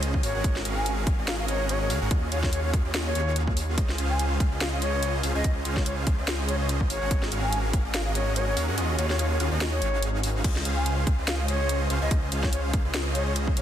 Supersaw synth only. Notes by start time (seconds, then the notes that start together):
Already playing: C#4 F4 G#4 C5 D#5
0.24 C#4 F#4 G#4 A#4 F5
0.35 C#4 F#4 G#4 A#4 F#5
0.44 C#4 F#4
0.65 C#4 F#4 G#4 A#4 F5
1.07 C#4 F#4 G#4 A#4 F5
1.18 C#4 F#4 G#4 A#4 D#5
1.90 C#4 F#4 G#4 A#4 F5
2.02 C#4 F#4 G#4 A#4 F#5
2.11 C#4 F4 F#4 G#4 D#5
2.32 C#4 F4 F#4 G#4 F5
2.73 C#4 F4 F#4 G#4 F5
2.85 C#4 F4 F#4 G#4 D#5
3.15 C#4 F4 F#4 G#4 F5
3.78 C#4 F4 C5 D#5
3.98 C#4 F4 G#4 C5 F5
4.40 F4 G#4 C5
4.52 C#4 F4 G#4 C5 D#5
5.24 C#4 F4 G#4 C5 F5
5.35 C#4 F4 G#4 C5 G#5
5.44 G#4 D#5
5.65 C#4 F4 G#4 C5 F5
6.07 F4 F5
6.18 C#4 F4 G#4 C5 D#5
6.90 C#4 F#4 G#4 A#4 F5
7.02 C#4 F#4 G#4 A#4 F#5
7.32 C#4 F#4 G#4 A#4 F5
7.73 C#4 F#4 G#4 F5
7.85 C#4 F#4 G#4 A#4 D#5
8.57 C#4 F#4 G#4 A#4 F5
8.68 C#4 F#4 G#4 A#4 F#5
8.77 C#4 F4 F#4 G#4 D#5
8.98 C#4 F4 F#4 G#4 F5
9.40 C#4 F4 F#4 G#4 F5
9.51 C#4 D#4 F#4 G#4 D#5
9.82 C#4 D#4 F#4 G#4 F5
10.44 C#4
10.65 C#4 F4 G#4 C5 F5
11.07 C#4
11.18 C#4 F4 G#4 C5 D#5
11.90 C#4 F4 G#4 C5 F5
12.02 C#4 F4 G#4 C5 G#5
12.32 C#4 F4 G#4 C5 F5
12.85 C#4 F4 G#4 C5 D#5
13.57 C#4 F#4 G#4 A#4 F5